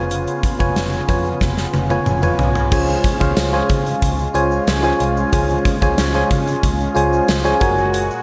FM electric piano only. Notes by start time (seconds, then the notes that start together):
Already playing: F4 B4 C#5 G#5
0.59 F4 B4 C#5 G#5
1.08 F4 B4 C#5 G#5
1.90 F4 B4 C#5 G#5
2.22 F4 B4 C#5 G#5
2.71 C#3 F4 G#4 C5 C#5 G#5
3.20 F4 G#4 C5 C#5 F5
3.53 F4 G#4 C5 C#5 G#5
4.34 F4 G#4 C5 C#5 G#5
4.83 F4 G#4 C5 C#5 G#5
5.32 C#3 F4 G#4 C5 C#5 G#5
5.82 F4 G#4 C5 C#5 G#5
6.14 F4 G#4 C5 C#5 G#5
6.95 F4 G#4 C5 C#5 G#5
7.44 F4 G#4 C5 C#5 G#5
7.60 F#4 G#4 A#4 C#5 G#5